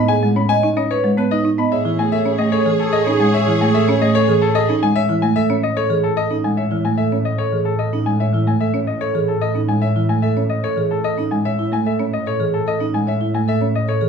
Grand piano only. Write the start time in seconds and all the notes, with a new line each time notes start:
Already playing: B5
0.08 G#5
0.36 B5
0.49 G#5
0.77 D#5
0.91 C#5
1.18 B4
1.31 D#5
1.59 B5
1.72 E5
1.99 G#5
2.12 E5
2.38 D#5
2.52 C#5
2.80 A4
2.93 D#5
3.20 G#5
3.34 E5
3.61 G#5
3.74 E5
4.02 D#5
4.15 C#5
4.42 A4
4.55 D#5
4.83 G#5
4.96 E5
5.22 G#5
5.36 E5
5.63 D#5
5.77 C#5
6.03 A4
6.17 D#5
6.44 G#5
6.57 E5
6.85 G#5
6.98 E5
7.25 D#5
7.38 C#5
7.65 A4
7.79 D#5
8.06 G#5
8.20 E5
8.47 G#5
8.61 E5
8.87 D#5
9.01 C#5
9.28 A4
9.41 D#5
9.69 G#5
9.82 E5
10.09 G#5
10.22 E5
10.50 D#5
10.64 C#5
10.91 A4
11.04 D#5
11.31 G#5
11.45 E5
11.73 G#5
11.86 E5
12.13 D#5
12.27 C#5
12.54 A4
12.68 D#5
12.94 G#5
13.08 E5
13.35 G#5
13.49 E5
13.75 D#5
13.89 C#5